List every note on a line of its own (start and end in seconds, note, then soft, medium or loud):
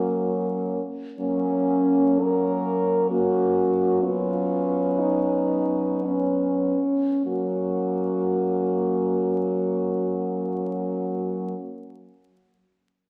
0.00 0.84 F#3 soft
0.00 0.80 A#3 soft
0.00 0.81 C#4 soft
0.00 0.24 F#4 medium
1.19 6.76 F#3 soft
1.19 2.16 A#3 soft
1.19 2.22 C#4 medium
1.19 2.17 C#4 soft
2.20 3.09 A#3 soft
2.20 3.09 C#4 soft
2.20 3.10 A#4 medium
3.10 4.00 A#3 medium
3.10 4.00 C#4 soft
3.10 4.00 F#4 medium
4.02 6.01 B3 soft
4.02 6.01 C#4 medium
4.02 5.00 F4 medium
4.99 6.07 D#4 medium
6.05 6.79 B3 soft
6.05 6.79 C#4 soft
6.05 7.24 C#4 soft
7.24 11.56 F#3 soft
7.24 11.56 A#3 soft
7.24 11.56 C#4 soft
7.24 11.57 F#4 soft